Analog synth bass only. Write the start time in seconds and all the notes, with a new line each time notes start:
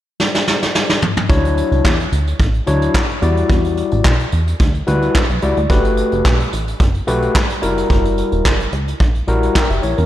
1.30 D2
1.72 C#2
1.85 E2
2.12 D2
2.40 A1
2.67 D2
3.22 E2
3.49 E2
3.92 A1
4.05 B1
4.33 E2
4.60 D2
4.88 D2
5.29 B1
5.43 C#2
5.57 D2
5.70 G1
6.12 F#1
6.25 B1
6.53 A1
6.80 F#1
7.08 B1
7.63 F#1
7.90 F#1
8.32 E1
8.45 F#1
8.72 C#2
9.00 A#1
9.28 A#1
9.70 F#1
9.84 A#1
9.98 E2